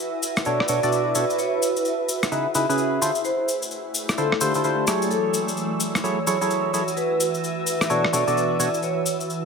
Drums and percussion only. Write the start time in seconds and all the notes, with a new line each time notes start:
0.23 cabasa
0.37 cross-stick, cabasa
0.45 cabasa
0.60 cross-stick
0.68 cabasa
0.83 cabasa
0.92 cabasa
1.15 cabasa
1.30 cabasa
1.39 cabasa
1.62 cabasa
1.77 cabasa
1.85 cabasa
2.09 cabasa
2.23 cross-stick, cabasa
2.32 cabasa
2.55 cabasa
2.70 cabasa
2.78 cabasa
3.02 cabasa
3.15 cabasa
3.25 cabasa
3.48 cabasa
3.62 cabasa
3.71 cabasa
3.94 cabasa
4.09 cross-stick, cabasa
4.18 cabasa
4.32 cross-stick
4.41 cabasa
4.54 cabasa
4.64 cabasa
4.87 cross-stick, cabasa
5.02 cabasa
5.11 cabasa
5.34 cabasa
5.48 cabasa
5.57 cabasa
5.80 cabasa
5.95 cross-stick, cabasa
6.04 cabasa
6.27 cabasa
6.42 cabasa
6.51 cabasa
6.74 cabasa
6.88 cabasa
6.97 cabasa
7.20 cabasa
7.34 cabasa
7.44 cabasa
7.67 cabasa
7.81 cross-stick, cabasa
7.90 cabasa
8.04 cross-stick
8.13 cabasa
8.28 cabasa
8.37 cabasa
8.60 cabasa
8.74 cabasa
8.83 cabasa
9.06 cabasa
9.20 cabasa
9.30 cabasa